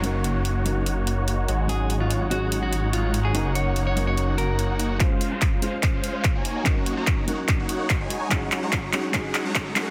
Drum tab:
HH |xxxxxxxx|xxxxxxxx|xxxxxxxx|xxxxxxxx|
CP |--------|--------|--------|x-x-x-x-|
BD |--------|--------|--------|o-o-o-o-|

HH |xxxxxxxx|xxxxxxxx|
CP |x-x-x-x-|xxxxxxxx|
BD |o-o-o-o-|o-o-o-o-|